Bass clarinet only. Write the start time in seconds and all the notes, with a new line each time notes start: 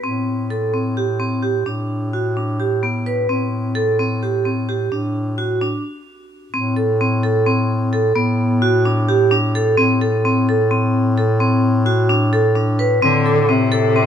0.03 A2
1.66 A2
3.29 A2
4.91 A2
6.52 A2
8.15 A2
9.78 A2
13.03 A2